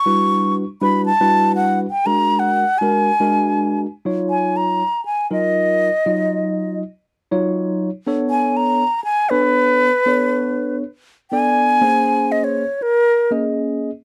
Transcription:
Already playing: C#6
0.06 G3 D4 E4 F#4 B4
0.81 G3 D4 E4 F#4 B4 B5
1.06 A5
1.21 G3 D4 E4 F#4 B4
1.56 F#5
1.91 G5
2.06 G#3 D4 F#4 A#4 A#5
2.39 F#5
2.78 G#3 D4 F#4 G#5
2.82 A#4
3.20 G#3 D4 F#4 A#4
4.05 F#3 D#4 F4 C#5
4.30 G#5
4.57 A#5
5.06 G#5
5.31 F#3 D#4 F4 A#4 D#5
6.06 F#3 D#4 F4 D#5
7.31 F#3 D#4 F4 C#5
8.07 B3 D4 A4 C#5
8.30 G#5
8.57 A#5
9.04 G#5
9.30 B3 D4 A4 B4 C#5
10.06 B3 D4 A4 C#5
11.31 B3 D4 A4 D5 G#5
11.81 A#3 C#4 G#4 C5
12.32 D#5
12.44 C#5
12.82 A#4
13.31 A#3 C#4 G#4 D#5

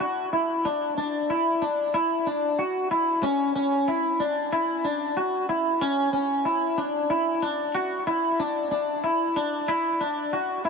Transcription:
0.00 F#4
0.33 E4
0.65 D4
0.98 D4
1.30 E4
1.62 D4
1.94 E4
2.27 D4
2.59 F#4
2.91 E4
3.23 C#4
3.56 C#4
3.88 E4
4.20 D4
4.52 E4
4.84 D4
5.17 F#4
5.49 E4
5.81 C#4
6.13 C#4
6.45 E4
6.78 D4
7.10 E4
7.42 D4
7.75 F#4
8.07 E4
8.40 D4
8.71 D4
9.04 E4
9.36 D4
9.68 E4
10.01 D4
10.33 F#4
10.65 E4

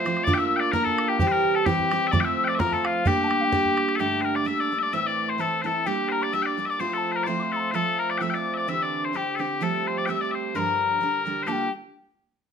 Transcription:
Already playing: C5
0.05 F3 A3 C4 F4, bodhran
0.17 bodhran
0.24 A#3 D4 D5 D6, bodhran
0.28 F4 A#4
0.34 E5 G5
0.40 E6
0.56 D5 G5
0.63 D6
0.72 A#3 D4 F4 A#4 A#5, bodhran
0.84 A4 A5, bodhran
0.98 bodhran
1.08 G4 G5
1.18 C3 E3 G3 C4 G4 G5, bodhran
1.27 C5
1.32 A#4
1.55 A4 A5
1.66 E3 G3 C4 G4 G5, bodhran
1.79 bodhran
1.91 E3 G3 C4 G4, bodhran
2.07 E5
2.11 F3 A3 C4 F4 D5 D6, bodhran
2.21 G5
2.25 E5 E6 G6
2.44 D5 G5
2.50 D6
2.55 F3 E5
2.59 A3 C4 F4 A#4 A#5, bodhran
2.72 A4 A5, bodhran
2.85 F4 F5, bodhran
3.05 G3 A#3 D4 G4 G5, bodhran
3.24 G5 A5
3.31 bodhran
3.41 F5 G5
3.52 G3 A#3 D4 G4, bodhran
3.65 bodhran
3.77 bodhran
3.89 bodhran
3.96 G2 D3 A4
4.00 G3 A3 A#3 D4 G4 G5
4.21 A#4 C5
4.35 D5 D6
4.45 G3 A3 A#3 D4 E5 E6
4.60 D5
4.72 G3 A3 A#3 D4
4.79 D5 E5 D6
4.92 A2 E3 A3 C4 E4 E5 E6
5.06 D5 D6
5.29 C5 C6
5.38 E3 A3 C4 E4 A4 A5
5.62 E3 C4 C5 A5
5.66 A3 E4 A4
5.86 G3 A#3 D4 G4 G5
6.09 A#4 C5 A#5
6.22 D5 D6
6.33 G3 A#3 D4 G4 E5 E6
6.42 D5 G5 D6
6.57 G3 A#3 D4 G4
6.66 E5
6.70 D5 D6
6.79 F3 A3 C4 F4 C5 C6
6.93 A4 C6
6.98 A5
7.12 C5
7.16 A#4 A#5
7.24 F3 C4 C5 D5 C6
7.28 A3 F4
7.40 C6 D6
7.52 A4
7.56 A#5 C6
7.71 F3 C4 A4 C5
7.75 A3 F4 A5
7.99 A#4 A#5
8.10 D5 D6
8.18 F3 C4 E5 G5
8.22 A3 F4 E6
8.30 G5
8.34 D5 E6
8.39 D6
8.54 D5 E5
8.58 D6
8.68 D3 E3 C4 D4 G4 E5 E6
8.81 D5 E6
8.86 D6
9.05 C5 C6
9.13 D3 C4 D4 G4 G5
9.35 D3 C4 A4
9.40 D4 G4
9.61 F3 G3 A3 C4 G4 A4 A5
9.87 C5 C6
9.98 D5 D6
10.06 G3 A3 C4 E5 G5
10.10 G4 E6
10.21 D5 D6
10.31 C5 E5
10.55 G2 D3 F3 G3 D4 A#4 C6
10.59 A#5
11.01 D3 G3 D4 A#4
11.25 D3 G3 D4 A#4
11.43 G2 C5
11.47 D3 G3 A#3 D4 F4 G4 A5
11.52 G5

